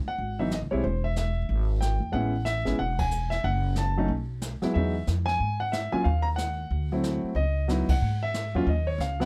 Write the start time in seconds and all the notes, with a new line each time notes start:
0.06 F#5, muted upright bass stroke
0.18 G#1, brush sweep
0.39 E3 F#3 B3 D#4 E5
0.51 D#5, snare, hi-hat pedal
0.61 C#2
0.71 B1 G3 G#3 C4 E4 C#5
0.83 E1 C5, brush sweep
1.04 E5
1.16 E5, snare, hi-hat pedal
1.49 G#1, brush sweep
1.81 G5, snare, hi-hat pedal
2.00 E2
2.12 A1 G#3 B3 C#4 E4 F#5, brush sweep
2.45 E5, snare, hi-hat pedal
2.65 G#1 G#3 B3 C#4 E4, snare
2.79 E1 F#5, brush sweep
2.99 G#5, kick, ride
3.11 hi-hat pedal
3.30 E5, snare
3.43 F#1 F#5, brush sweep
3.75 A5, snare, hi-hat pedal
3.97 F#3 A3 C#4 D#4
4.08 B1, brush sweep
4.42 snare, hi-hat pedal
4.61 F#3 G#3 B3 E4, muted upright bass stroke, snare
4.74 E2 F#3 G#3 B3 D#4 E5, brush sweep
5.07 F2, snare, hi-hat pedal
5.26 G#5, snare
5.40 G#2, brush sweep
5.60 F#5
5.72 E5, snare, hi-hat pedal
5.92 F#3 A#3 C#4 F4 G#5, muted upright bass stroke
6.04 D#2 F5, brush sweep
6.22 A#5
6.36 F#5, snare, hi-hat pedal
6.71 D2, brush sweep
6.92 F#3 A3 C4 E4
7.04 snare, hi-hat pedal
7.23 muted upright bass stroke
7.35 C#2 D#5, brush sweep
7.68 F#3 B3 D#4 E4, snare, hi-hat pedal
7.88 C2 F#5, kick, ride
8.02 G#2, brush sweep
8.23 E5
8.34 snare, hi-hat pedal
8.55 E2 F#3 A#3 C#4 F4
8.67 D#2 D#5, brush sweep
8.87 C#5
8.98 C#2 F5, snare, hi-hat pedal
9.20 F#3 B3 C4 E4 F#5, snare